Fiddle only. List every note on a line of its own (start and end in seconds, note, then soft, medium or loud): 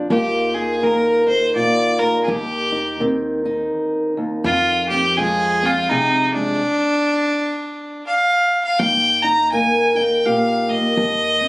0.11 0.56 G4 medium
0.54 0.85 G#4 medium
0.83 1.27 A#4 medium
1.28 1.54 C5 medium
1.55 2.00 D5 loud
1.99 2.22 A#4 medium
2.24 2.30 G#4 medium
2.29 3.01 G4 medium
4.45 4.86 F4 loud
4.89 5.18 G4 loud
5.17 5.67 G#4 loud
5.65 5.91 F4 medium
5.89 6.33 D#4 medium
6.32 8.06 D4 loud
8.07 8.61 F5 loud
8.65 8.80 F5 medium
8.79 9.24 G5 loud
9.22 9.51 A#5 loud
9.51 9.97 G#5 loud
9.96 10.27 G5 medium
10.25 10.70 F5 medium
10.69 11.48 D#5 loud